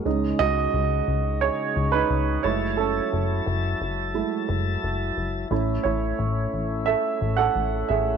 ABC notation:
X:1
M:4/4
L:1/16
Q:1/4=88
K:F#dor
V:1 name="Upright piano"
z2 [Fd]6 [Gc]3 [DB]3 c2 | [CA]8 z8 | z2 [Ec]6 [Ae]3 [Af]3 [Ge]2 |]
V:2 name="Upright piano"
[G,CD]12- [G,CD]2 [G,A,E]2 | z8 [G,A,E]2 z6 | [A,CE]16 |]
V:3 name="Tonewheel organ"
[C,G,D]12- [C,G,D]2 [F,Ea]2- | [F,Ea]16 | [A,C]16 |]
V:4 name="Analog synth bass" clef=bass
C,,2 C,,2 C,,2 C,,3 z C,,2 C,,2 F,,,2- | F,,,2 F,,,2 F,,,2 F,,,3 z F,,,2 F,,,2 F,,,2 | A,,,2 A,,,2 A,,,2 A,,,3 z A,,,2 A,,,2 A,,,2 |]